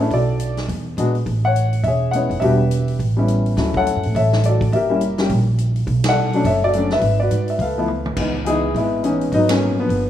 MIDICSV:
0, 0, Header, 1, 4, 480
1, 0, Start_track
1, 0, Key_signature, 3, "minor"
1, 0, Tempo, 287494
1, 199, Time_signature, 4, 2, 24, 8
1, 16860, End_track
2, 0, Start_track
2, 0, Title_t, "Grand piano"
2, 0, Program_c, 0, 0
2, 0, Note_on_c, 0, 57, 63
2, 0, Note_on_c, 0, 69, 54
2, 0, Note_on_c, 0, 73, 75
2, 3, Note_on_c, 0, 61, 56
2, 22, Note_on_c, 0, 64, 70
2, 23, Note_on_c, 0, 62, 59
2, 172, Note_off_c, 0, 57, 0
2, 177, Note_off_c, 0, 69, 0
2, 178, Note_off_c, 0, 61, 0
2, 184, Note_off_c, 0, 73, 0
2, 187, Note_off_c, 0, 64, 0
2, 188, Note_off_c, 0, 62, 0
2, 225, Note_on_c, 0, 66, 57
2, 227, Note_on_c, 0, 74, 84
2, 231, Note_on_c, 0, 69, 54
2, 1106, Note_off_c, 0, 66, 0
2, 1107, Note_off_c, 0, 74, 0
2, 1109, Note_off_c, 0, 69, 0
2, 1631, Note_on_c, 0, 56, 66
2, 1646, Note_on_c, 0, 59, 54
2, 1653, Note_on_c, 0, 62, 59
2, 1661, Note_on_c, 0, 66, 73
2, 1893, Note_off_c, 0, 56, 0
2, 1901, Note_off_c, 0, 59, 0
2, 1905, Note_off_c, 0, 62, 0
2, 1909, Note_off_c, 0, 66, 0
2, 2418, Note_on_c, 0, 78, 100
2, 2458, Note_on_c, 0, 73, 67
2, 3040, Note_off_c, 0, 78, 0
2, 3064, Note_on_c, 0, 76, 82
2, 3116, Note_off_c, 0, 73, 0
2, 3132, Note_on_c, 0, 68, 55
2, 3141, Note_on_c, 0, 73, 63
2, 3518, Note_off_c, 0, 76, 0
2, 3528, Note_on_c, 0, 78, 85
2, 3574, Note_on_c, 0, 56, 52
2, 3585, Note_off_c, 0, 73, 0
2, 3585, Note_on_c, 0, 59, 45
2, 3594, Note_on_c, 0, 61, 46
2, 3595, Note_on_c, 0, 64, 57
2, 3610, Note_on_c, 0, 73, 62
2, 3826, Note_off_c, 0, 56, 0
2, 3831, Note_off_c, 0, 59, 0
2, 3836, Note_off_c, 0, 61, 0
2, 3836, Note_off_c, 0, 64, 0
2, 4001, Note_off_c, 0, 68, 0
2, 4006, Note_on_c, 0, 76, 82
2, 4034, Note_off_c, 0, 73, 0
2, 4036, Note_on_c, 0, 55, 57
2, 4039, Note_off_c, 0, 78, 0
2, 4045, Note_on_c, 0, 59, 59
2, 4064, Note_on_c, 0, 62, 57
2, 4067, Note_on_c, 0, 66, 69
2, 4072, Note_on_c, 0, 71, 60
2, 4077, Note_on_c, 0, 67, 62
2, 4296, Note_off_c, 0, 55, 0
2, 4301, Note_off_c, 0, 59, 0
2, 4311, Note_off_c, 0, 62, 0
2, 4312, Note_off_c, 0, 66, 0
2, 4917, Note_off_c, 0, 76, 0
2, 4951, Note_off_c, 0, 71, 0
2, 4953, Note_off_c, 0, 67, 0
2, 5288, Note_on_c, 0, 55, 60
2, 5304, Note_on_c, 0, 59, 51
2, 5312, Note_on_c, 0, 61, 57
2, 5325, Note_on_c, 0, 64, 68
2, 5923, Note_off_c, 0, 55, 0
2, 5931, Note_off_c, 0, 59, 0
2, 5935, Note_off_c, 0, 61, 0
2, 5941, Note_off_c, 0, 64, 0
2, 5949, Note_on_c, 0, 54, 55
2, 5960, Note_on_c, 0, 57, 50
2, 5979, Note_on_c, 0, 61, 53
2, 5986, Note_on_c, 0, 64, 57
2, 6287, Note_on_c, 0, 73, 64
2, 6290, Note_on_c, 0, 69, 68
2, 6298, Note_on_c, 0, 78, 96
2, 6934, Note_off_c, 0, 73, 0
2, 6939, Note_off_c, 0, 69, 0
2, 6946, Note_on_c, 0, 76, 86
2, 6959, Note_on_c, 0, 73, 55
2, 6964, Note_on_c, 0, 69, 59
2, 6966, Note_off_c, 0, 78, 0
2, 7279, Note_off_c, 0, 54, 0
2, 7284, Note_off_c, 0, 57, 0
2, 7294, Note_off_c, 0, 61, 0
2, 7297, Note_off_c, 0, 64, 0
2, 7428, Note_off_c, 0, 76, 0
2, 7440, Note_off_c, 0, 69, 0
2, 7440, Note_on_c, 0, 74, 73
2, 7465, Note_on_c, 0, 69, 52
2, 7471, Note_on_c, 0, 66, 55
2, 7834, Note_off_c, 0, 73, 0
2, 7882, Note_off_c, 0, 69, 0
2, 7885, Note_off_c, 0, 66, 0
2, 7899, Note_on_c, 0, 76, 79
2, 7915, Note_off_c, 0, 74, 0
2, 7936, Note_on_c, 0, 67, 60
2, 7940, Note_on_c, 0, 70, 61
2, 8179, Note_on_c, 0, 55, 64
2, 8188, Note_on_c, 0, 58, 59
2, 8194, Note_on_c, 0, 61, 59
2, 8203, Note_on_c, 0, 64, 70
2, 8347, Note_off_c, 0, 55, 0
2, 8352, Note_off_c, 0, 58, 0
2, 8355, Note_off_c, 0, 61, 0
2, 8360, Note_off_c, 0, 64, 0
2, 8661, Note_on_c, 0, 55, 67
2, 8667, Note_off_c, 0, 67, 0
2, 8668, Note_on_c, 0, 58, 62
2, 8681, Note_on_c, 0, 61, 58
2, 8692, Note_on_c, 0, 67, 71
2, 8783, Note_off_c, 0, 76, 0
2, 8805, Note_off_c, 0, 70, 0
2, 8828, Note_off_c, 0, 55, 0
2, 8832, Note_off_c, 0, 58, 0
2, 8838, Note_off_c, 0, 61, 0
2, 8844, Note_off_c, 0, 67, 0
2, 10162, Note_on_c, 0, 78, 106
2, 10166, Note_on_c, 0, 74, 64
2, 10173, Note_on_c, 0, 69, 72
2, 10584, Note_on_c, 0, 54, 64
2, 10589, Note_on_c, 0, 57, 62
2, 10603, Note_on_c, 0, 61, 59
2, 10612, Note_on_c, 0, 62, 78
2, 10749, Note_off_c, 0, 54, 0
2, 10752, Note_off_c, 0, 57, 0
2, 10759, Note_off_c, 0, 61, 0
2, 10763, Note_off_c, 0, 62, 0
2, 10787, Note_off_c, 0, 69, 0
2, 10795, Note_on_c, 0, 76, 85
2, 10808, Note_on_c, 0, 73, 62
2, 10812, Note_on_c, 0, 69, 62
2, 10817, Note_off_c, 0, 78, 0
2, 11022, Note_off_c, 0, 74, 0
2, 11046, Note_off_c, 0, 76, 0
2, 11077, Note_off_c, 0, 69, 0
2, 11089, Note_on_c, 0, 74, 97
2, 11097, Note_on_c, 0, 66, 64
2, 11102, Note_on_c, 0, 69, 64
2, 11259, Note_on_c, 0, 54, 59
2, 11263, Note_on_c, 0, 57, 58
2, 11284, Note_on_c, 0, 61, 55
2, 11288, Note_on_c, 0, 62, 67
2, 11508, Note_off_c, 0, 54, 0
2, 11510, Note_off_c, 0, 57, 0
2, 11520, Note_off_c, 0, 61, 0
2, 11523, Note_off_c, 0, 62, 0
2, 11562, Note_off_c, 0, 74, 0
2, 11565, Note_on_c, 0, 76, 99
2, 11590, Note_on_c, 0, 71, 59
2, 11679, Note_off_c, 0, 73, 0
2, 11700, Note_off_c, 0, 66, 0
2, 11702, Note_off_c, 0, 69, 0
2, 11994, Note_off_c, 0, 76, 0
2, 12016, Note_on_c, 0, 74, 72
2, 12024, Note_off_c, 0, 71, 0
2, 12049, Note_on_c, 0, 71, 59
2, 12063, Note_on_c, 0, 66, 58
2, 12506, Note_off_c, 0, 74, 0
2, 12521, Note_on_c, 0, 76, 70
2, 12655, Note_off_c, 0, 71, 0
2, 12663, Note_off_c, 0, 66, 0
2, 12685, Note_off_c, 0, 76, 0
2, 12712, Note_on_c, 0, 77, 72
2, 12739, Note_on_c, 0, 71, 53
2, 12748, Note_on_c, 0, 69, 55
2, 12985, Note_on_c, 0, 53, 63
2, 12994, Note_on_c, 0, 57, 59
2, 13003, Note_on_c, 0, 59, 59
2, 13009, Note_on_c, 0, 64, 75
2, 13150, Note_off_c, 0, 53, 0
2, 13154, Note_off_c, 0, 57, 0
2, 13158, Note_off_c, 0, 59, 0
2, 13162, Note_off_c, 0, 64, 0
2, 13410, Note_off_c, 0, 77, 0
2, 13604, Note_off_c, 0, 71, 0
2, 13609, Note_off_c, 0, 69, 0
2, 13651, Note_on_c, 0, 52, 48
2, 13671, Note_on_c, 0, 56, 45
2, 13678, Note_on_c, 0, 59, 44
2, 13684, Note_on_c, 0, 63, 54
2, 13904, Note_off_c, 0, 52, 0
2, 13914, Note_off_c, 0, 56, 0
2, 13917, Note_off_c, 0, 59, 0
2, 13920, Note_off_c, 0, 63, 0
2, 14109, Note_on_c, 0, 52, 57
2, 14126, Note_on_c, 0, 56, 52
2, 14141, Note_on_c, 0, 59, 54
2, 14141, Note_on_c, 0, 68, 91
2, 14146, Note_on_c, 0, 63, 69
2, 14182, Note_on_c, 0, 64, 67
2, 14373, Note_off_c, 0, 52, 0
2, 14381, Note_off_c, 0, 56, 0
2, 14389, Note_off_c, 0, 59, 0
2, 14391, Note_off_c, 0, 63, 0
2, 14619, Note_off_c, 0, 64, 0
2, 14624, Note_off_c, 0, 68, 0
2, 14644, Note_on_c, 0, 64, 79
2, 14664, Note_on_c, 0, 59, 55
2, 14678, Note_on_c, 0, 56, 57
2, 15068, Note_off_c, 0, 56, 0
2, 15070, Note_off_c, 0, 64, 0
2, 15077, Note_off_c, 0, 59, 0
2, 15077, Note_on_c, 0, 52, 57
2, 15093, Note_on_c, 0, 56, 50
2, 15102, Note_on_c, 0, 59, 52
2, 15103, Note_on_c, 0, 61, 76
2, 15105, Note_off_c, 0, 52, 0
2, 15117, Note_on_c, 0, 63, 62
2, 15130, Note_on_c, 0, 52, 57
2, 15553, Note_off_c, 0, 52, 0
2, 15567, Note_off_c, 0, 56, 0
2, 15569, Note_off_c, 0, 63, 0
2, 15571, Note_off_c, 0, 59, 0
2, 15586, Note_off_c, 0, 61, 0
2, 15594, Note_on_c, 0, 63, 94
2, 15609, Note_on_c, 0, 54, 65
2, 15613, Note_on_c, 0, 59, 63
2, 15872, Note_off_c, 0, 63, 0
2, 15874, Note_on_c, 0, 61, 86
2, 15879, Note_off_c, 0, 54, 0
2, 15904, Note_on_c, 0, 54, 58
2, 15904, Note_on_c, 0, 58, 53
2, 16308, Note_off_c, 0, 61, 0
2, 16333, Note_off_c, 0, 59, 0
2, 16358, Note_on_c, 0, 59, 80
2, 16366, Note_on_c, 0, 53, 47
2, 16367, Note_on_c, 0, 50, 47
2, 16504, Note_off_c, 0, 54, 0
2, 16504, Note_off_c, 0, 58, 0
2, 16860, Note_off_c, 0, 50, 0
2, 16860, Note_off_c, 0, 53, 0
2, 16860, Note_off_c, 0, 59, 0
2, 16860, End_track
3, 0, Start_track
3, 0, Title_t, "Upright bass"
3, 0, Program_c, 1, 32
3, 173, Note_on_c, 1, 35, 68
3, 1098, Note_off_c, 1, 35, 0
3, 1144, Note_on_c, 1, 40, 74
3, 1598, Note_off_c, 1, 40, 0
3, 1619, Note_on_c, 1, 34, 68
3, 2075, Note_off_c, 1, 34, 0
3, 2106, Note_on_c, 1, 33, 76
3, 3025, Note_off_c, 1, 33, 0
3, 3065, Note_on_c, 1, 28, 76
3, 3786, Note_off_c, 1, 28, 0
3, 3830, Note_on_c, 1, 29, 66
3, 4018, Note_off_c, 1, 29, 0
3, 4029, Note_on_c, 1, 28, 76
3, 4947, Note_off_c, 1, 28, 0
3, 4996, Note_on_c, 1, 33, 72
3, 5911, Note_off_c, 1, 33, 0
3, 5957, Note_on_c, 1, 38, 73
3, 6554, Note_off_c, 1, 38, 0
3, 6607, Note_on_c, 1, 42, 55
3, 6753, Note_off_c, 1, 42, 0
3, 6775, Note_on_c, 1, 45, 63
3, 6913, Note_off_c, 1, 45, 0
3, 6923, Note_on_c, 1, 33, 74
3, 7834, Note_off_c, 1, 33, 0
3, 7885, Note_on_c, 1, 30, 72
3, 8795, Note_off_c, 1, 30, 0
3, 8843, Note_on_c, 1, 34, 73
3, 9754, Note_off_c, 1, 34, 0
3, 9797, Note_on_c, 1, 35, 75
3, 10710, Note_off_c, 1, 35, 0
3, 10764, Note_on_c, 1, 30, 80
3, 11674, Note_off_c, 1, 30, 0
3, 11711, Note_on_c, 1, 32, 73
3, 12162, Note_off_c, 1, 32, 0
3, 12200, Note_on_c, 1, 44, 74
3, 12646, Note_off_c, 1, 44, 0
3, 12665, Note_on_c, 1, 37, 77
3, 13584, Note_off_c, 1, 37, 0
3, 13631, Note_on_c, 1, 37, 70
3, 14548, Note_off_c, 1, 37, 0
3, 14602, Note_on_c, 1, 32, 72
3, 15513, Note_off_c, 1, 32, 0
3, 15557, Note_on_c, 1, 32, 76
3, 16471, Note_off_c, 1, 32, 0
3, 16510, Note_on_c, 1, 31, 71
3, 16860, Note_off_c, 1, 31, 0
3, 16860, End_track
4, 0, Start_track
4, 0, Title_t, "Drums"
4, 178, Note_on_c, 9, 36, 30
4, 185, Note_on_c, 9, 46, 40
4, 345, Note_off_c, 9, 36, 0
4, 352, Note_off_c, 9, 46, 0
4, 660, Note_on_c, 9, 42, 52
4, 827, Note_off_c, 9, 42, 0
4, 953, Note_on_c, 9, 38, 37
4, 955, Note_on_c, 9, 46, 37
4, 1120, Note_off_c, 9, 38, 0
4, 1122, Note_off_c, 9, 46, 0
4, 1145, Note_on_c, 9, 36, 29
4, 1154, Note_on_c, 9, 46, 44
4, 1312, Note_off_c, 9, 36, 0
4, 1321, Note_off_c, 9, 46, 0
4, 1632, Note_on_c, 9, 42, 48
4, 1799, Note_off_c, 9, 42, 0
4, 1917, Note_on_c, 9, 46, 33
4, 2084, Note_off_c, 9, 46, 0
4, 2107, Note_on_c, 9, 36, 33
4, 2109, Note_on_c, 9, 46, 40
4, 2273, Note_off_c, 9, 36, 0
4, 2276, Note_off_c, 9, 46, 0
4, 2601, Note_on_c, 9, 42, 50
4, 2768, Note_off_c, 9, 42, 0
4, 2883, Note_on_c, 9, 46, 34
4, 3050, Note_off_c, 9, 46, 0
4, 3068, Note_on_c, 9, 36, 31
4, 3072, Note_on_c, 9, 46, 43
4, 3235, Note_off_c, 9, 36, 0
4, 3239, Note_off_c, 9, 46, 0
4, 3559, Note_on_c, 9, 42, 51
4, 3726, Note_off_c, 9, 42, 0
4, 3850, Note_on_c, 9, 46, 35
4, 4017, Note_off_c, 9, 46, 0
4, 4036, Note_on_c, 9, 36, 33
4, 4037, Note_on_c, 9, 46, 44
4, 4203, Note_off_c, 9, 36, 0
4, 4204, Note_off_c, 9, 46, 0
4, 4523, Note_on_c, 9, 42, 50
4, 4690, Note_off_c, 9, 42, 0
4, 4806, Note_on_c, 9, 46, 36
4, 4973, Note_off_c, 9, 46, 0
4, 4999, Note_on_c, 9, 36, 30
4, 5005, Note_on_c, 9, 46, 41
4, 5166, Note_off_c, 9, 36, 0
4, 5172, Note_off_c, 9, 46, 0
4, 5479, Note_on_c, 9, 42, 46
4, 5646, Note_off_c, 9, 42, 0
4, 5775, Note_on_c, 9, 46, 36
4, 5942, Note_off_c, 9, 46, 0
4, 5961, Note_on_c, 9, 36, 32
4, 5963, Note_on_c, 9, 38, 37
4, 5964, Note_on_c, 9, 46, 44
4, 6128, Note_off_c, 9, 36, 0
4, 6130, Note_off_c, 9, 38, 0
4, 6131, Note_off_c, 9, 46, 0
4, 6249, Note_on_c, 9, 36, 52
4, 6416, Note_off_c, 9, 36, 0
4, 6453, Note_on_c, 9, 42, 53
4, 6620, Note_off_c, 9, 42, 0
4, 6732, Note_on_c, 9, 46, 36
4, 6899, Note_off_c, 9, 46, 0
4, 6927, Note_on_c, 9, 36, 31
4, 6941, Note_on_c, 9, 46, 43
4, 7094, Note_off_c, 9, 36, 0
4, 7108, Note_off_c, 9, 46, 0
4, 7225, Note_on_c, 9, 38, 48
4, 7391, Note_off_c, 9, 38, 0
4, 7405, Note_on_c, 9, 42, 54
4, 7572, Note_off_c, 9, 42, 0
4, 7696, Note_on_c, 9, 36, 58
4, 7712, Note_on_c, 9, 46, 39
4, 7863, Note_off_c, 9, 36, 0
4, 7879, Note_off_c, 9, 46, 0
4, 7889, Note_on_c, 9, 36, 31
4, 7898, Note_on_c, 9, 46, 44
4, 8056, Note_off_c, 9, 36, 0
4, 8065, Note_off_c, 9, 46, 0
4, 8362, Note_on_c, 9, 42, 47
4, 8529, Note_off_c, 9, 42, 0
4, 8649, Note_on_c, 9, 38, 56
4, 8650, Note_on_c, 9, 46, 37
4, 8816, Note_off_c, 9, 38, 0
4, 8817, Note_off_c, 9, 46, 0
4, 8842, Note_on_c, 9, 46, 43
4, 8844, Note_on_c, 9, 36, 33
4, 9009, Note_off_c, 9, 46, 0
4, 9010, Note_off_c, 9, 36, 0
4, 9323, Note_on_c, 9, 42, 47
4, 9490, Note_off_c, 9, 42, 0
4, 9611, Note_on_c, 9, 46, 38
4, 9778, Note_off_c, 9, 46, 0
4, 9801, Note_on_c, 9, 36, 33
4, 9806, Note_on_c, 9, 46, 45
4, 9968, Note_off_c, 9, 36, 0
4, 9973, Note_off_c, 9, 46, 0
4, 10081, Note_on_c, 9, 38, 78
4, 10083, Note_on_c, 9, 51, 63
4, 10248, Note_off_c, 9, 38, 0
4, 10250, Note_off_c, 9, 51, 0
4, 10572, Note_on_c, 9, 46, 34
4, 10739, Note_off_c, 9, 46, 0
4, 10762, Note_on_c, 9, 36, 31
4, 10766, Note_on_c, 9, 46, 46
4, 10929, Note_off_c, 9, 36, 0
4, 10933, Note_off_c, 9, 46, 0
4, 11242, Note_on_c, 9, 42, 50
4, 11409, Note_off_c, 9, 42, 0
4, 11528, Note_on_c, 9, 38, 37
4, 11529, Note_on_c, 9, 46, 36
4, 11695, Note_off_c, 9, 38, 0
4, 11696, Note_off_c, 9, 46, 0
4, 11709, Note_on_c, 9, 46, 45
4, 11715, Note_on_c, 9, 36, 32
4, 11876, Note_off_c, 9, 46, 0
4, 11882, Note_off_c, 9, 36, 0
4, 12202, Note_on_c, 9, 42, 53
4, 12369, Note_off_c, 9, 42, 0
4, 12484, Note_on_c, 9, 46, 36
4, 12651, Note_off_c, 9, 46, 0
4, 12674, Note_on_c, 9, 36, 33
4, 12682, Note_on_c, 9, 46, 41
4, 12841, Note_off_c, 9, 36, 0
4, 12849, Note_off_c, 9, 46, 0
4, 13156, Note_on_c, 9, 47, 43
4, 13323, Note_off_c, 9, 47, 0
4, 13450, Note_on_c, 9, 47, 57
4, 13617, Note_off_c, 9, 47, 0
4, 13635, Note_on_c, 9, 49, 62
4, 13636, Note_on_c, 9, 36, 61
4, 13802, Note_off_c, 9, 49, 0
4, 13803, Note_off_c, 9, 36, 0
4, 14127, Note_on_c, 9, 42, 46
4, 14294, Note_off_c, 9, 42, 0
4, 14602, Note_on_c, 9, 36, 29
4, 14620, Note_on_c, 9, 46, 40
4, 14769, Note_off_c, 9, 36, 0
4, 14786, Note_off_c, 9, 46, 0
4, 15088, Note_on_c, 9, 42, 48
4, 15255, Note_off_c, 9, 42, 0
4, 15379, Note_on_c, 9, 46, 34
4, 15546, Note_off_c, 9, 46, 0
4, 15561, Note_on_c, 9, 36, 31
4, 15567, Note_on_c, 9, 46, 44
4, 15728, Note_off_c, 9, 36, 0
4, 15734, Note_off_c, 9, 46, 0
4, 15844, Note_on_c, 9, 38, 70
4, 15845, Note_on_c, 9, 51, 61
4, 16010, Note_off_c, 9, 38, 0
4, 16012, Note_off_c, 9, 51, 0
4, 16519, Note_on_c, 9, 36, 29
4, 16530, Note_on_c, 9, 46, 42
4, 16686, Note_off_c, 9, 36, 0
4, 16697, Note_off_c, 9, 46, 0
4, 16860, End_track
0, 0, End_of_file